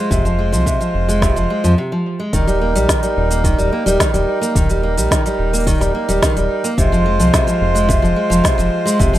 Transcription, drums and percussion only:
0.11 kick loud
0.11 cabasa soft
0.26 cabasa soft
0.54 cabasa medium
0.66 kick medium
0.66 cabasa medium
0.81 cabasa soft
1.09 cabasa medium
1.22 kick loud
1.22 snare medium
1.22 cabasa soft
1.37 cabasa soft
1.64 cabasa medium
2.33 kick loud
2.33 open hi-hat medium
2.33 cabasa soft
2.48 cabasa soft
2.76 open hi-hat soft
2.76 cabasa medium
2.89 kick loud
2.89 snare loud
2.89 open hi-hat medium
2.89 cabasa medium
3.03 open hi-hat soft
3.03 cabasa soft
3.31 open hi-hat soft
3.31 cabasa medium
3.44 kick loud
3.44 open hi-hat medium
3.44 cabasa medium
3.59 cabasa soft
3.87 open hi-hat soft
3.87 cabasa medium
4.00 kick loud
4.00 snare loud
4.00 open hi-hat medium
4.00 cabasa medium
4.14 open hi-hat soft
4.14 cabasa soft
4.43 cabasa medium
4.55 kick loud
4.55 open hi-hat medium
4.55 cabasa medium
4.69 open hi-hat soft
4.69 cabasa soft
4.97 open hi-hat soft
4.97 cabasa medium
5.11 kick loud
5.11 snare loud
5.11 open hi-hat medium
5.11 cabasa medium
5.26 open hi-hat soft
5.26 cabasa soft
5.54 open hi-hat soft
5.54 cabasa medium
5.57 open hi-hat soft
5.60 open hi-hat soft
5.64 kick loud
5.64 open hi-hat soft
5.67 open hi-hat medium
5.67 cabasa medium
5.71 open hi-hat soft
5.74 open hi-hat soft
5.78 snare soft
5.78 open hi-hat soft
5.81 open hi-hat soft
5.81 cabasa soft
6.09 open hi-hat soft
6.09 cabasa medium
6.22 kick loud
6.22 snare loud
6.22 open hi-hat medium
6.22 cabasa medium
6.37 open hi-hat soft
6.37 cabasa soft
6.64 open hi-hat soft
6.64 cabasa medium
6.78 kick loud
6.78 open hi-hat soft
6.78 cabasa medium
6.93 cabasa soft
7.20 open hi-hat soft
7.20 cabasa medium
7.34 kick loud
7.34 snare loud
7.34 open hi-hat medium
7.34 cabasa medium
7.48 open hi-hat soft
7.48 cabasa soft
7.76 open hi-hat soft
7.76 cabasa medium
7.89 kick loud
7.89 open hi-hat soft
7.89 cabasa medium
8.05 cabasa soft
8.31 open hi-hat soft
8.31 cabasa medium
8.44 kick loud
8.44 snare loud
8.44 open hi-hat medium
8.44 cabasa medium
8.59 open hi-hat soft
8.59 cabasa soft
8.87 open hi-hat soft
8.87 cabasa medium
9.00 kick loud
9.00 open hi-hat medium
9.00 cabasa medium
9.14 open hi-hat soft
9.14 cabasa soft

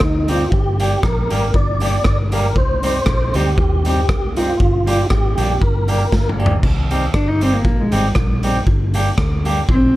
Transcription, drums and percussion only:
0.00 kick loud
0.00 cross-stick loud
0.28 closed hi-hat loud
0.28 tambourine medium
0.52 kick loud
0.80 closed hi-hat medium
0.80 tambourine medium
1.03 kick loud
1.03 cross-stick loud
1.30 closed hi-hat medium
1.30 tambourine medium
1.54 kick loud
1.80 closed hi-hat medium
1.80 tambourine medium
2.04 kick loud
2.04 cross-stick loud
2.32 closed hi-hat loud
2.32 tambourine medium
2.56 kick loud
2.83 closed hi-hat loud
2.83 tambourine medium
3.06 kick loud
3.06 cross-stick loud
3.34 closed hi-hat medium
3.34 tambourine medium
3.58 kick loud
3.85 closed hi-hat medium
3.85 tambourine medium
4.09 kick loud
4.09 cross-stick loud
4.37 closed hi-hat loud
4.37 tambourine medium
4.60 kick loud
4.87 closed hi-hat loud
4.87 tambourine medium
5.10 kick loud
5.10 cross-stick loud
5.38 closed hi-hat medium
5.38 tambourine medium
5.62 kick loud
5.88 closed hi-hat medium
5.88 tambourine medium
6.12 kick loud
6.12 snare medium
6.29 mid tom medium
6.40 tambourine medium
6.46 floor tom loud
6.63 kick loud
6.63 crash medium
6.91 closed hi-hat medium
6.91 tambourine medium
7.14 kick loud
7.14 cross-stick loud
7.41 closed hi-hat medium
7.41 tambourine medium
7.65 kick loud
7.92 closed hi-hat medium
7.92 tambourine medium
8.15 kick loud
8.15 cross-stick loud
8.43 closed hi-hat loud
8.43 tambourine medium
8.67 kick loud
8.94 closed hi-hat medium
8.94 tambourine medium
9.18 kick loud
9.18 cross-stick loud
9.45 closed hi-hat medium
9.45 tambourine medium
9.69 kick loud

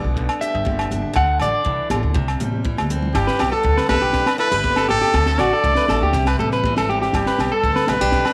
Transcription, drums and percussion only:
0.17 kick medium
0.17 muted conga soft
0.29 cross-stick medium
0.29 low agogo medium
0.42 closed hi-hat medium
0.42 muted conga soft
0.66 kick loud
0.66 high conga medium
0.79 cross-stick medium
0.79 low agogo medium
0.91 closed hi-hat soft
0.91 muted conga soft
0.91 high conga medium
1.16 kick medium
1.16 cross-stick medium
1.16 muted conga soft
1.16 low agogo medium
1.40 cross-stick medium
1.40 closed hi-hat medium
1.40 low conga medium
1.40 low agogo medium
1.66 kick medium
1.90 cross-stick medium
1.90 closed hi-hat medium
1.90 high conga loud
1.90 low agogo medium
2.15 kick loud
2.15 muted conga soft
2.28 cross-stick medium
2.28 low agogo medium
2.40 closed hi-hat medium
2.40 muted conga soft
2.40 high conga medium
2.53 high conga medium
2.65 kick loud
2.65 high conga medium
2.77 cross-stick medium
2.77 high conga medium
2.77 low agogo medium
2.90 closed hi-hat medium
2.90 low conga medium
3.02 low conga medium
3.15 kick medium
3.15 snare medium
3.15 low agogo medium
3.27 snare medium
3.39 snare medium
3.39 low agogo medium
3.65 kick loud
3.77 snare medium
3.89 snare medium
3.89 high conga loud
3.89 low agogo medium
4.13 kick loud
4.13 snare medium
4.13 muted conga soft
4.26 snare medium
4.26 low agogo medium
4.39 muted conga soft
4.52 snare soft
4.64 kick loud
4.64 high conga medium
4.76 snare medium
4.76 low agogo medium
4.89 muted conga soft
4.89 high conga medium
5.01 snare soft
5.14 kick medium
5.14 snare medium
5.14 muted conga soft
5.14 low agogo medium
5.26 snare medium
5.38 snare medium
5.38 low agogo medium
5.64 kick medium
5.75 snare medium
5.88 snare medium
5.88 high conga loud
5.88 low agogo medium
6.13 kick loud
6.13 snare medium
6.13 muted conga soft
6.25 snare medium
6.25 low agogo medium
6.39 muted conga soft
6.39 high conga medium
6.51 snare soft
6.64 kick loud
6.64 high conga medium
6.76 snare medium
6.76 low agogo medium
6.89 muted conga soft
7.02 snare soft
7.13 kick loud
7.13 snare medium
7.13 muted conga soft
7.13 low agogo medium
7.26 snare medium
7.39 snare medium
7.39 low agogo medium
7.64 kick medium
7.76 snare medium
7.87 snare medium
7.87 high conga loud
7.87 low agogo medium
8.12 kick loud
8.12 snare medium
8.12 muted conga soft
8.25 snare medium
8.25 low agogo medium

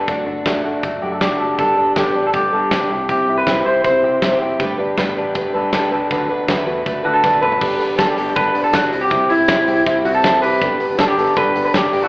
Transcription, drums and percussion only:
0.08 kick medium
0.08 closed hi-hat medium
0.46 kick loud
0.46 snare medium
0.46 closed hi-hat medium
0.83 kick medium
0.83 closed hi-hat medium
1.21 kick medium
1.21 snare loud
1.21 closed hi-hat medium
1.59 kick medium
1.59 closed hi-hat medium
1.96 kick loud
1.96 snare medium
1.96 closed hi-hat medium
2.33 kick loud
2.33 closed hi-hat medium
2.71 kick loud
2.71 snare loud
2.71 closed hi-hat medium
3.09 kick medium
3.09 closed hi-hat medium
3.47 kick loud
3.47 snare medium
3.47 closed hi-hat medium
3.84 kick loud
3.84 closed hi-hat medium
4.22 kick medium
4.22 snare medium
4.22 closed hi-hat medium
4.60 kick loud
4.60 closed hi-hat medium
4.98 kick loud
4.98 snare loud
4.98 closed hi-hat medium
5.35 kick loud
5.35 closed hi-hat medium
5.73 kick loud
5.73 snare loud
5.73 closed hi-hat medium
6.11 kick medium
6.11 closed hi-hat medium
6.48 kick loud
6.48 snare loud
6.48 closed hi-hat medium
6.86 kick medium
6.86 closed hi-hat medium
7.24 kick loud
7.24 snare soft
7.33 high tom medium
7.43 mid tom medium
7.52 floor tom medium
7.61 kick loud
7.61 crash medium
7.81 open hi-hat medium
7.98 kick loud
7.98 snare loud
7.98 closed hi-hat medium
8.18 open hi-hat medium
8.36 kick loud
8.36 closed hi-hat medium
8.55 open hi-hat medium
8.73 kick loud
8.73 snare loud
8.73 closed hi-hat medium
8.93 open hi-hat medium
9.10 kick loud
9.10 closed hi-hat medium
9.30 open hi-hat medium
9.48 kick loud
9.48 snare loud
9.48 closed hi-hat medium
9.68 open hi-hat medium
9.86 kick loud
9.86 closed hi-hat medium
10.05 open hi-hat medium
10.24 kick loud
10.24 snare loud
10.24 closed hi-hat medium
10.43 open hi-hat medium
10.62 kick loud
10.62 closed hi-hat medium
10.80 open hi-hat medium
10.98 kick loud
10.98 snare loud
10.98 closed hi-hat medium
11.18 open hi-hat medium
11.36 kick loud
11.36 closed hi-hat medium
11.56 open hi-hat medium
11.74 kick loud
11.74 snare loud
11.74 closed hi-hat medium
11.93 open hi-hat medium

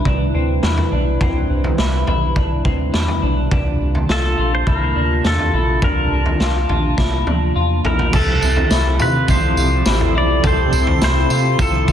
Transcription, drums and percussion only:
0.05 kick medium
0.05 floor tom medium
0.63 snare loud
0.77 floor tom medium
1.21 kick medium
1.21 floor tom loud
1.64 floor tom medium
1.78 snare loud
2.07 floor tom medium
2.36 kick medium
2.36 floor tom medium
2.65 kick medium
2.94 snare loud
3.08 floor tom medium
3.51 kick medium
3.51 floor tom loud
3.95 floor tom medium
4.09 snare loud
4.67 kick medium
4.67 floor tom medium
5.25 snare loud
5.39 floor tom medium
5.82 kick medium
5.82 floor tom loud
6.26 floor tom medium
6.40 snare medium
6.69 floor tom medium
6.98 kick medium
6.98 snare medium
7.27 high tom medium
7.85 floor tom medium
7.99 floor tom medium
8.13 kick loud
8.13 floor tom loud
8.13 crash medium
8.13 tambourine medium
8.42 tambourine medium
8.56 floor tom medium
8.71 snare loud
8.71 tambourine medium
8.99 floor tom medium
8.99 tambourine medium
9.28 kick medium
9.28 floor tom medium
9.28 tambourine medium
9.57 tambourine medium
9.86 snare loud
9.86 tambourine loud
10.01 floor tom medium
10.44 kick loud
10.44 floor tom loud
10.44 tambourine medium
10.73 tambourine medium
10.87 floor tom medium
11.02 snare loud
11.02 tambourine medium
11.30 tambourine medium
11.59 kick medium
11.59 floor tom medium
11.59 tambourine medium
11.88 kick medium
11.88 tambourine medium

